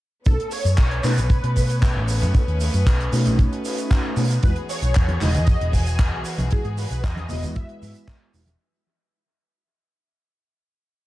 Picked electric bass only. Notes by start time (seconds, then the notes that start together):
0.26 B1
0.65 F#2
0.78 B1
1.04 B2
1.18 B1
1.44 B2
1.96 A1
2.22 F#2
2.48 D#2
2.74 F#2
2.87 B1
3.13 B2
3.26 B1
4.17 B2
4.44 E2
4.82 B1
4.96 E2
5.21 E1
5.35 E2
5.61 E1
6.13 B1
6.39 B1
6.65 G#2
6.91 B1
7.30 E1
7.43 E2
7.82 G#2
8.34 E1